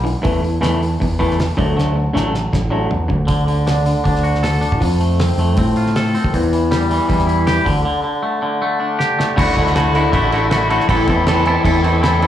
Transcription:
Already playing: picked electric bass B1
0.04 clean electric guitar D3 E3, open hi-hat
0.22 clean electric guitar E2 E3 A3, picked electric bass E2, kick, open hi-hat
0.43 clean electric guitar E2 E3, open hi-hat
0.61 clean electric guitar E2 E3 A3, picked electric bass E2, snare, open hi-hat
0.80 clean electric guitar E2 E3, open hi-hat
1.00 clean electric guitar E2 E3, picked electric bass E2, kick, open hi-hat
1.19 clean electric guitar E2 E3 A3, kick, open hi-hat
1.31 snare
1.39 clean electric guitar E2 E3, snare, open hi-hat
1.57 picked electric bass D2, clean electric guitar D3 F#3 A3, kick, open hi-hat
1.75 clean electric guitar D3 F#3 A3, snare
1.95 clean electric guitar D3 F#3
2.14 picked electric bass A1, clean electric guitar D3 F#3 A3, snare
2.32 clean electric guitar D3 F#3, snare
2.53 picked electric bass A1, clean electric guitar D3 F#3, kick, snare
2.70 clean electric guitar D3 F#3 A3
2.90 picked electric bass E2, clean electric guitar D3 F#3, floor tom
3.08 picked electric bass D2, clean electric guitar D3 F#3, kick
3.27 picked electric bass D2, clean electric guitar D3, kick, open hi-hat
3.47 clean electric guitar D3, open hi-hat
3.67 clean electric guitar D4, snare, open hi-hat
3.86 clean electric guitar D3, open hi-hat
4.04 picked electric bass D2, clean electric guitar D4, kick, open hi-hat
4.16 snare
4.23 clean electric guitar F#4, open hi-hat
4.35 snare
4.43 clean electric guitar A4, snare, open hi-hat
4.61 clean electric guitar D4, open hi-hat
4.72 picked electric bass A1, kick
4.80 picked electric bass F2, clean electric guitar F3, kick, open hi-hat
5.00 clean electric guitar A3, open hi-hat
5.20 clean electric guitar C4, snare, open hi-hat
5.38 picked electric bass F2, clean electric guitar A3, open hi-hat
5.57 picked electric bass A2, clean electric guitar C4, kick, open hi-hat
5.76 clean electric guitar F4, open hi-hat
5.87 snare
5.96 clean electric guitar A4, snare, open hi-hat
6.15 clean electric guitar C4, open hi-hat
6.24 picked electric bass D#2, kick
6.33 clean electric guitar E2, picked electric bass E2, kick, open hi-hat
6.53 clean electric guitar E3, open hi-hat
6.71 clean electric guitar G3, snare, open hi-hat
6.91 clean electric guitar E3, open hi-hat
7.08 picked electric bass E2, clean electric guitar G3, kick, open hi-hat
7.19 snare
7.27 clean electric guitar E4, open hi-hat
7.47 clean electric guitar G4, snare, open hi-hat
7.65 picked electric bass D2, clean electric guitar D3, kick, open hi-hat
7.85 clean electric guitar D3
8.04 clean electric guitar D3
8.23 clean electric guitar A3
8.42 clean electric guitar D3
8.62 clean electric guitar A3
8.80 clean electric guitar D4
8.99 clean electric guitar G4, snare
9.18 clean electric guitar A3, snare
9.36 picked electric bass D2, clean electric guitar D3 A3 E4 F#4, kick, crash
9.57 picked electric bass D2, clean electric guitar D3 A3 E4 F#4, kick, crash
9.67 snare
9.75 clean electric guitar D3 A3 E4 F#4, snare, crash
9.94 clean electric guitar D3 A3 E4 F#4, crash
10.12 picked electric bass A1, clean electric guitar D3 A3 E4 F#4, kick, crash
10.32 clean electric guitar D3 A3 E4 F#4, crash
10.50 clean electric guitar D3 A3 E4 F#4, snare, crash
10.69 clean electric guitar D3 A3 E4 F#4, crash
10.80 snare
10.88 picked electric bass A1, clean electric guitar A2 E3 C4 E4 A4, kick, crash
11.07 picked electric bass E2, clean electric guitar A2 E3 C4 E4 A4, kick, crash
11.26 clean electric guitar A2 E3 C4 E4 A4, snare, crash
11.45 clean electric guitar A2 E3 C4 E4 A4, crash
11.64 picked electric bass E2, clean electric guitar A2 E3 C4 E4 A4, kick, crash
11.83 clean electric guitar A2 E3 C4 E4 A4, crash
12.02 clean electric guitar A2 E3 C4 E4 A4, snare, crash
12.21 clean electric guitar A2 E3 C4 E4 A4, crash

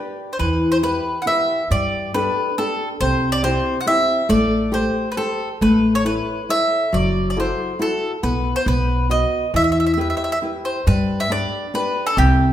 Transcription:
Already playing: nylon-string guitar D4 G4 B4
0.33 mandolin C5
0.39 upright bass E2, nylon-string guitar E3, mandolin B4
0.72 mandolin C5
0.82 nylon-string guitar E4 G4 B4, mandolin B4
1.22 nylon-string guitar E4, mandolin F#5
1.27 nylon-string guitar G4 B4, mandolin E5
1.71 upright bass G2, nylon-string guitar G3, mandolin D5
2.14 nylon-string guitar D4 G4 A4, mandolin B4
2.58 nylon-string guitar D4 G4 A4, mandolin A4
3.00 upright bass C2, nylon-string guitar C3, mandolin C5
3.32 mandolin D5
3.43 nylon-string guitar C4 E4 G4, mandolin C5
3.81 mandolin F#5
3.86 nylon-string guitar C4 E4 G4, mandolin E5
4.29 upright bass A1, nylon-string guitar A3, mandolin D5
4.72 nylon-string guitar G4 A4 C5, mandolin C5
5.12 mandolin B4
5.17 nylon-string guitar G4 A4 C5, mandolin A4
5.61 upright bass A1, nylon-string guitar A3, mandolin B4
5.95 mandolin C#5
6.05 nylon-string guitar E4 A4 C#5, mandolin B4
6.49 nylon-string guitar E4 A4 C#5, mandolin E5
6.93 upright bass F#1, nylon-string guitar F#3, mandolin D5
7.30 mandolin D5
7.37 nylon-string guitar E4 F#4 A4, mandolin C5
7.79 nylon-string guitar E4 F#4 A4, mandolin A4
8.23 upright bass B1, nylon-string guitar B3, mandolin B4
8.56 mandolin C5
8.66 upright bass B1, nylon-string guitar B3, mandolin B4
9.09 nylon-string guitar F#4 B4 D#5, mandolin D#5
9.54 upright bass E2, nylon-string guitar E3, mandolin E5
9.64 mandolin E5
9.72 mandolin E5
9.80 mandolin E5
9.87 mandolin E5
9.94 nylon-string guitar E4 G4, mandolin E5
9.98 nylon-string guitar B4, mandolin E5
10.10 mandolin E5
10.17 mandolin E5
10.24 mandolin E5
10.32 mandolin E5
10.42 nylon-string guitar E4 G4 B4
10.65 mandolin C5
10.87 upright bass G2, nylon-string guitar G3, mandolin B4
11.20 mandolin E5
11.30 nylon-string guitar D4 G4 B4, mandolin D5
11.74 nylon-string guitar D4 G4 B4, mandolin B4
12.07 mandolin A4
12.17 upright bass C2, nylon-string guitar C3, mandolin G4

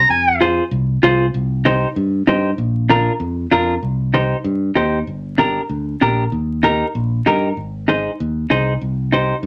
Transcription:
0.09 fingered electric bass F2, clarinet G#5
0.41 clean electric guitar F4 G#4 C5
0.71 fingered electric bass C2
1.03 fingered electric bass C2, clean electric guitar F4 G#4 C5
1.34 fingered electric bass C2
1.65 clean electric guitar D#4 G4 C5
1.96 fingered electric bass G2
2.27 fingered electric bass G2, clean electric guitar D#4 G4 C5
2.58 fingered electric bass A#1
2.89 clean electric guitar D4 F4 A#4
3.20 fingered electric bass F2
3.52 fingered electric bass F2, clean electric guitar D4 F4 A#4
3.83 fingered electric bass C2
4.14 clean electric guitar D#4 G4 C5
4.44 fingered electric bass G2
4.75 fingered electric bass D#2, clean electric guitar D#4 G4 C5
5.07 fingered electric bass G1
5.38 clean electric guitar D4 G4 A#4
5.69 fingered electric bass D2
6.01 fingered electric bass A#1, clean electric guitar D4 G4 A#4
6.32 fingered electric bass D#2
6.63 clean electric guitar D#4 G4 A#4
6.95 fingered electric bass A#1
7.26 fingered electric bass G2, clean electric guitar D#4 G4 A#4
7.57 fingered electric bass G#1
7.88 clean electric guitar D#4 G#4 C5
8.20 fingered electric bass D#2
8.50 fingered electric bass C2, clean electric guitar D#4 G#4 C5
8.81 fingered electric bass C2
9.12 clean electric guitar D#4 G4 C5
9.43 fingered electric bass G2

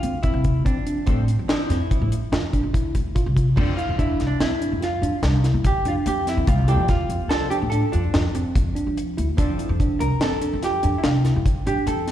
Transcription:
Already playing: hollow-body jazz guitar F4
0.03 upright bass D2, tine electric piano C4, closed hi-hat
0.23 tine electric piano C4, hollow-body jazz guitar E4, kick, closed hi-hat
0.34 upright bass C2
0.44 kick, closed hi-hat
0.65 upright bass F2, tine electric piano C4, hollow-body jazz guitar D4, kick, closed hi-hat
0.87 tine electric piano D4, closed hi-hat
1.06 upright bass A2, hollow-body jazz guitar F3 C4 D4 A4, tine electric piano C4, kick, closed hi-hat
1.28 closed hi-hat
1.39 upright bass F3
1.48 hollow-body jazz guitar F3 C4 D4 E4, tine electric piano D4, snare, closed hi-hat
1.69 upright bass F2, tine electric piano C4, snare, closed hi-hat
1.91 tine electric piano E4, kick, closed hi-hat
2.01 upright bass A2
2.12 closed hi-hat
2.32 upright bass F2, tine electric piano F4, snare, closed hi-hat
2.53 tine electric piano D4, kick, closed hi-hat
2.63 upright bass F2
2.74 tine electric piano E4, kick, closed hi-hat
2.95 upright bass D2, kick, closed hi-hat
3.15 tine electric piano F4, kick, closed hi-hat
3.26 upright bass C2
3.36 tine electric piano F4, kick, closed hi-hat
3.56 upright bass F2, hollow-body jazz guitar F3 C4 D4 A4, tine electric piano D4, kick, crash
3.77 tine electric piano E4, hollow-body jazz guitar F4, closed hi-hat
3.89 upright bass F2
3.99 tine electric piano D4, hollow-body jazz guitar E4, kick, closed hi-hat
4.20 upright bass C2, snare, closed hi-hat
4.27 hollow-body jazz guitar D4
4.40 upright bass F2, tine electric piano C4, hollow-body jazz guitar E4, snare, closed hi-hat
4.61 tine electric piano D4, closed hi-hat
4.72 upright bass F2
4.81 tine electric piano F4, hollow-body jazz guitar F4, snare, closed hi-hat
5.02 upright bass F2, tine electric piano D4, closed hi-hat
5.23 upright bass C2, tine electric piano D4, snare, closed hi-hat
5.44 tine electric piano E4, snare, closed hi-hat
5.54 upright bass F2
5.64 hollow-body jazz guitar G4, kick, closed hi-hat
5.85 upright bass F2, tine electric piano D4, hollow-body jazz guitar F4, closed hi-hat
6.06 upright bass F2, hollow-body jazz guitar G4, closed hi-hat
6.27 tine electric piano C4, hollow-body jazz guitar E4, snare, closed hi-hat
6.37 upright bass D3
6.47 upright bass C2, hollow-body jazz guitar F4, kick, closed hi-hat
6.68 hollow-body jazz guitar F3 C4 D4 G4 A4, tine electric piano E4, closed hi-hat
6.79 upright bass F2
6.88 tine electric piano F4, hollow-body jazz guitar F4, kick, snare, closed hi-hat
7.09 upright bass F2, closed hi-hat
7.29 upright bass C2, hollow-body jazz guitar F3 C4 D4 A4, tine electric piano F4, snare, closed hi-hat
7.50 tine electric piano D4, hollow-body jazz guitar G4, closed hi-hat
7.62 upright bass A2
7.70 tine electric piano D4, hollow-body jazz guitar A4, closed hi-hat
7.92 upright bass F2, hollow-body jazz guitar D4, tine electric piano F4, closed hi-hat
8.14 upright bass F2, tine electric piano F4, snare, closed hi-hat
8.35 upright bass F2, tine electric piano C4, closed hi-hat
8.55 upright bass F2, kick, closed hi-hat
8.75 tine electric piano D4, closed hi-hat
8.87 upright bass F3
8.97 closed hi-hat
9.17 upright bass D2, tine electric piano E4, closed hi-hat
9.37 upright bass F2, hollow-body jazz guitar F3 C4 D4 A4, tine electric piano D4, kick, closed hi-hat
9.58 tine electric piano E4, closed hi-hat
9.69 upright bass F2
9.80 tine electric piano D4, kick, closed hi-hat
10.00 upright bass C2, hollow-body jazz guitar A#4, closed hi-hat
10.21 upright bass F2, tine electric piano C4, hollow-body jazz guitar A4, snare, closed hi-hat
10.42 tine electric piano D4, closed hi-hat
10.53 upright bass F2
10.63 tine electric piano F4, hollow-body jazz guitar G4, snare, closed hi-hat
10.83 upright bass F2, tine electric piano D4, closed hi-hat
10.98 hollow-body jazz guitar E4
11.03 upright bass C2, tine electric piano D4, hollow-body jazz guitar F4, snare, closed hi-hat
11.24 tine electric piano E4, snare, closed hi-hat
11.36 upright bass F2
11.46 kick, closed hi-hat
11.66 upright bass F2, tine electric piano D4, hollow-body jazz guitar G4, closed hi-hat
11.87 upright bass F2, hollow-body jazz guitar A4, closed hi-hat
12.08 tine electric piano C4, snare, closed hi-hat

